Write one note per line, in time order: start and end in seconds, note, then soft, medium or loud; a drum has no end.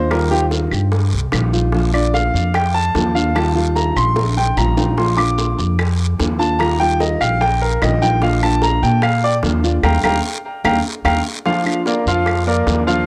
0.00 0.66 D#2 medium
0.00 0.10 A#3 medium
0.00 0.10 D4 medium
0.00 0.10 C5 medium
0.11 0.30 D#3 medium
0.11 0.31 G3 medium
0.11 0.30 D#4 medium
0.11 0.30 F4 medium
0.11 0.31 A#4 medium
0.11 high bongo medium
0.11 long guiro medium
0.11 claves medium
0.31 0.92 G3 medium
0.31 0.92 D#4 medium
0.31 0.93 F4 medium
0.31 0.43 G4 medium
0.31 high bongo soft
0.51 high bongo medium
0.51 short guiro medium
0.71 1.10 G2 medium
0.71 short guiro medium
0.71 claves medium
0.92 muted nylon-string guitar stroke medium
0.92 high bongo medium
0.92 long guiro medium
1.12 1.32 C2 medium
1.12 high bongo soft
1.32 2.28 A#1 medium
1.32 1.52 D#3 soft
1.32 1.52 G3 soft
1.32 1.53 D#4 medium
1.32 1.52 F4 medium
1.32 high bongo medium
1.32 low bongo medium
1.32 short guiro medium
1.32 claves medium
1.52 1.73 G3 medium
1.52 1.73 D#4 medium
1.52 1.73 F4 medium
1.52 high bongo soft
1.52 short guiro medium
1.72 1.93 F3 medium
1.72 1.93 A#3 medium
1.72 1.93 D4 medium
1.72 1.92 F4 medium
1.72 high bongo medium
1.72 long guiro medium
1.93 2.55 A#3 medium
1.93 2.54 D4 medium
1.93 2.55 F4 medium
1.93 2.14 D5 medium
1.93 high bongo soft
1.93 claves medium
2.14 2.52 F5 medium
2.14 high bongo medium
2.14 short guiro medium
2.34 2.91 F2 medium
2.34 short guiro medium
2.54 2.74 G5 medium
2.54 muted nylon-string guitar stroke medium
2.54 high bongo medium
2.54 long guiro medium
2.54 claves medium
2.74 3.12 A5 loud
2.74 high bongo soft
2.95 3.90 D#2 medium
2.95 3.15 F3 medium
2.95 3.15 A#3 medium
2.95 3.14 D4 medium
2.95 3.14 F4 soft
2.95 high bongo medium
2.95 low bongo medium
2.95 short guiro medium
3.15 3.35 A#3 medium
3.15 3.35 D4 medium
3.15 3.35 F4 medium
3.15 3.35 F5 medium
3.15 high bongo soft
3.15 short guiro medium
3.34 3.55 D#3 medium
3.34 3.55 G3 medium
3.34 3.55 D#4 medium
3.34 3.54 F4 medium
3.34 3.73 A5 medium
3.34 high bongo medium
3.34 long guiro medium
3.34 claves medium
3.55 4.16 G3 medium
3.55 4.16 D#4 medium
3.55 4.17 F4 medium
3.55 high bongo soft
3.75 3.96 A#5 medium
3.75 high bongo medium
3.75 short guiro medium
3.96 4.53 A#1 medium
3.96 4.34 C6 loud
3.96 short guiro medium
3.96 claves medium
4.16 muted nylon-string guitar stroke medium
4.16 high bongo loud
4.16 long guiro medium
4.36 4.57 G5 medium
4.36 low bongo medium
4.56 5.53 A#1 loud
4.56 4.76 D#3 soft
4.56 4.77 G3 soft
4.56 4.77 D#4 medium
4.56 4.76 F4 medium
4.56 4.95 A#5 medium
4.56 low bongo medium
4.56 short guiro medium
4.56 claves medium
4.77 4.98 G3 medium
4.77 4.97 D#4 medium
4.77 4.97 F4 medium
4.77 low bongo loud
4.77 short guiro medium
4.97 5.17 F3 medium
4.97 5.17 A#3 medium
4.97 5.16 D4 medium
4.97 5.16 F4 medium
4.97 5.17 C6 medium
4.97 high bongo medium
4.97 long guiro medium
5.17 5.78 A#3 medium
5.17 5.78 D4 medium
5.17 5.79 F4 medium
5.17 5.55 D6 medium
5.17 high bongo soft
5.17 claves medium
5.38 high bongo medium
5.38 short guiro medium
5.59 6.16 F2 medium
5.59 short guiro medium
5.78 muted nylon-string guitar stroke medium
5.78 high bongo medium
5.78 long guiro medium
5.78 claves medium
6.00 high bongo soft
6.18 7.15 D#2 medium
6.18 6.38 F3 soft
6.18 6.39 A#3 medium
6.18 6.38 D4 medium
6.18 6.38 F4 medium
6.18 high bongo medium
6.18 low bongo medium
6.18 short guiro medium
6.39 6.59 A#3 soft
6.39 6.59 D4 medium
6.39 6.59 F4 medium
6.39 6.59 A5 medium
6.39 high bongo soft
6.39 short guiro medium
6.59 6.79 D#3 medium
6.59 6.79 G3 medium
6.59 6.80 D#4 medium
6.59 6.79 F4 medium
6.59 6.79 A#5 medium
6.59 high bongo medium
6.59 long guiro medium
6.59 claves medium
6.80 7.40 G3 medium
6.80 7.40 D#4 medium
6.80 7.41 F4 medium
6.80 7.00 G5 loud
6.80 high bongo soft
7.00 7.20 D#5 medium
7.00 high bongo medium
7.00 short guiro medium
7.21 7.78 A#1 medium
7.21 7.40 F5 medium
7.21 short guiro medium
7.21 claves medium
7.41 7.61 G5 medium
7.41 muted nylon-string guitar stroke medium
7.41 high bongo medium
7.41 long guiro medium
7.62 7.81 A#4 medium
7.62 high bongo soft
7.82 8.77 A#1 medium
7.82 8.01 D#3 soft
7.82 8.01 G3 soft
7.82 8.02 D#4 soft
7.82 8.00 F4 medium
7.82 8.02 D#5 medium
7.82 high bongo medium
7.82 low bongo medium
7.82 short guiro medium
7.82 claves medium
8.02 8.22 G3 medium
8.02 8.22 D#4 medium
8.02 8.21 F4 medium
8.02 8.22 G5 loud
8.02 high bongo soft
8.02 short guiro medium
8.22 8.42 F3 medium
8.22 8.42 A#3 medium
8.22 8.42 D4 medium
8.22 8.42 F4 medium
8.22 8.42 F5 medium
8.22 high bongo medium
8.22 long guiro medium
8.42 9.03 A#3 medium
8.42 9.02 D4 medium
8.42 9.03 F4 medium
8.42 8.62 A5 loud
8.42 high bongo soft
8.42 claves medium
8.62 8.82 A#5 loud
8.62 high bongo medium
8.62 short guiro medium
8.82 9.39 A#2 loud
8.82 9.02 G5 medium
8.82 short guiro medium
9.02 9.23 F5 medium
9.02 muted nylon-string guitar stroke medium
9.02 high bongo medium
9.02 long guiro medium
9.02 claves medium
9.22 9.36 D5 loud
9.22 high bongo soft
9.43 9.81 D#2 medium
9.43 9.63 F3 soft
9.43 9.63 A#3 medium
9.43 9.63 D4 medium
9.43 9.63 F4 medium
9.43 high bongo medium
9.43 low bongo medium
9.43 short guiro medium
9.63 9.82 A#3 medium
9.63 9.84 D4 medium
9.63 9.83 F4 medium
9.63 high bongo soft
9.63 short guiro medium
9.83 9.99 D#2 medium
9.83 9.97 G3 medium
9.83 9.97 A#3 loud
9.83 9.97 D#4 medium
9.83 9.97 F5 medium
9.83 9.97 G5 medium
9.83 9.97 A#5 medium
9.83 high bongo medium
9.83 long guiro medium
9.83 claves medium
10.03 10.19 D#2 medium
10.03 10.16 G3 medium
10.03 10.16 A#3 medium
10.03 10.17 D#4 medium
10.03 10.17 F5 medium
10.03 10.17 G5 medium
10.03 10.17 A#5 loud
10.03 high bongo medium
10.03 long guiro loud
10.03 claves loud
10.64 10.80 D#2 loud
10.64 10.77 G3 loud
10.64 10.77 A#3 loud
10.64 10.77 D#4 loud
10.64 10.78 F5 medium
10.64 10.78 G5 medium
10.64 10.78 A#5 medium
10.64 high bongo loud
10.64 long guiro medium
10.64 claves loud
11.05 11.20 D#2 loud
11.05 11.18 G3 medium
11.05 11.18 A#3 medium
11.05 11.18 D#4 medium
11.05 11.18 F5 medium
11.05 11.18 G5 medium
11.05 11.18 A#5 medium
11.05 high bongo loud
11.05 long guiro medium
11.05 claves loud
11.45 11.79 F3 medium
11.45 11.65 F3 medium
11.45 11.65 A#3 medium
11.45 11.65 D4 medium
11.45 11.79 F4 medium
11.45 11.63 F4 medium
11.45 11.79 F5 medium
11.45 high bongo medium
11.45 long guiro medium
11.65 12.26 A#3 medium
11.65 12.25 D4 medium
11.65 12.26 F4 medium
11.65 high bongo soft
11.65 claves medium
11.86 12.03 A#3 medium
11.86 12.03 A#4 medium
11.86 12.04 D5 medium
11.86 high bongo medium
11.86 short guiro medium
12.06 12.63 F2 medium
12.06 12.40 F3 medium
12.06 12.41 F4 medium
12.06 12.41 F5 medium
12.06 short guiro medium
12.26 muted nylon-string guitar stroke medium
12.26 high bongo medium
12.26 long guiro medium
12.26 claves medium
12.47 12.80 A#3 medium
12.47 12.80 A#4 medium
12.47 12.81 D5 medium
12.47 high bongo soft
12.67 13.06 D#2 medium
12.67 12.87 F3 soft
12.67 12.87 A#3 soft
12.67 12.87 D4 medium
12.67 12.86 F4 medium
12.67 high bongo medium
12.67 low bongo medium
12.67 short guiro medium
12.87 13.06 F3 medium
12.87 13.06 A#3 medium
12.87 13.06 D4 medium
12.87 13.06 F4 medium
12.87 13.06 F5 medium
12.87 high bongo soft
12.87 short guiro medium